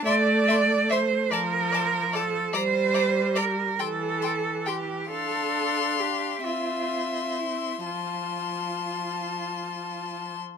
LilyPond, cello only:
\new Staff \with { instrumentName = "Cello" } { \time 6/8 \key f \major \tempo 4. = 45 d''4 c''8 bes'4 a'8 | c''4 bes'8 a'4 g'8 | a'4 g'8 f'4 e'8 | f'2~ f'8 r8 | }